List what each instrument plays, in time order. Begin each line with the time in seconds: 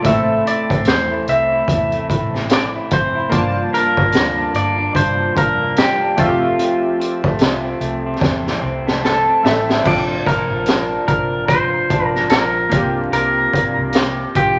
Already playing: clean electric guitar F3 A3 D4
0.02 fingered electric bass A1, clean electric guitar A2 E4 E5, synth keys A3 A#3 E4, kick, closed hi-hat
0.07 synth keys C4 A4
0.29 clean electric guitar A3
0.46 clean electric guitar E4 D5, closed hi-hat
0.70 fingered electric bass A1, clean electric guitar C4, kick, closed hi-hat
0.85 fingered electric bass E2, clean electric guitar E3 C5, snare, closed hi-hat
1.12 clean electric guitar E4
1.27 fingered electric bass C2, clean electric guitar C4 E5, closed hi-hat
1.52 clean electric guitar E4
1.68 fingered electric bass E2, clean electric guitar A2 E4, kick, closed hi-hat
1.92 clean electric guitar A3, closed hi-hat
2.10 fingered electric bass A1, clean electric guitar E4, kick, closed hi-hat
2.34 clean electric guitar C4, snare
2.49 clean electric guitar E3 D5, snare, closed hi-hat
2.75 clean electric guitar E4
2.91 fingered electric bass F1, clean electric guitar C4 C5, kick, closed hi-hat
3.15 clean electric guitar E4
3.29 fingered electric bass G1, clean electric guitar G2 D4, synth keys A#3 D4 F4, kick, closed hi-hat
3.34 synth keys A5
3.56 clean electric guitar F3
3.73 clean electric guitar D4 A#4, closed hi-hat
3.97 fingered electric bass G1, clean electric guitar A#3, kick
4.12 fingered electric bass D2, clean electric guitar D3, snare, closed hi-hat
4.37 clean electric guitar D4
4.54 fingered electric bass G1, clean electric guitar A#3 D5, closed hi-hat
4.78 clean electric guitar D4
4.94 fingered electric bass G1, clean electric guitar G2 D4 C5, kick, closed hi-hat
5.19 clean electric guitar F3
5.36 fingered electric bass F1, clean electric guitar D4 A#4, kick, closed hi-hat
5.60 clean electric guitar A#3
5.76 clean electric guitar D3 G4, snare, closed hi-hat
6.01 clean electric guitar D4
6.17 fingered electric bass F1, clean electric guitar F2 F4, synth keys A3 C4 E5, kick, closed hi-hat
6.21 synth keys F4
6.28 synth keys G4
6.42 clean electric guitar C4
6.59 clean electric guitar F2 C4, closed hi-hat
7.00 clean electric guitar C4, closed hi-hat
7.24 fingered electric bass F1, clean electric guitar A3, kick
7.39 fingered electric bass C2, clean electric guitar C3, snare, closed hi-hat
7.65 clean electric guitar C4
7.81 fingered electric bass C2, clean electric guitar A3, closed hi-hat
8.06 clean electric guitar C4
8.21 fingered electric bass E2, clean electric guitar C4, kick, snare
8.46 clean electric guitar E3, snare
8.62 fingered electric bass C2, clean electric guitar C4
8.87 clean electric guitar A3, snare
9.04 clean electric guitar C3 A4, synth keys A5, snare
9.28 clean electric guitar C4
9.43 fingered electric bass A1, synth keys A3 C4 E4 A4 E5, clean electric guitar A3, snare
9.69 clean electric guitar C4, snare
9.83 fingered electric bass A#1, clean electric guitar A#2, synth keys C4 D4 F4, kick, crash
9.87 clean electric guitar D5, synth keys A5
10.26 clean electric guitar F3 A#4, kick, closed hi-hat
10.50 fingered electric bass A#1
10.66 clean electric guitar D4, snare, closed hi-hat
11.08 fingered electric bass A#1, clean electric guitar A#4, kick, closed hi-hat
11.48 fingered electric bass A#2, clean electric guitar F3 C5, kick, closed hi-hat
11.90 fingered electric bass A#1, clean electric guitar D4, kick, closed hi-hat
12.05 clean electric guitar A#4
12.15 snare
12.29 fingered electric bass A#1, clean electric guitar F3 A#4, snare, closed hi-hat
12.69 fingered electric bass C2, clean electric guitar C3, synth keys A#3 D4 F4, kick, closed hi-hat
12.74 synth keys G4
13.12 fingered electric bass C2, clean electric guitar C3 A#4, closed hi-hat
13.53 clean electric guitar A#3, kick, closed hi-hat
13.78 fingered electric bass C2
13.93 clean electric guitar G4, snare, closed hi-hat
14.35 fingered electric bass A#1, clean electric guitar F4 G4, kick, closed hi-hat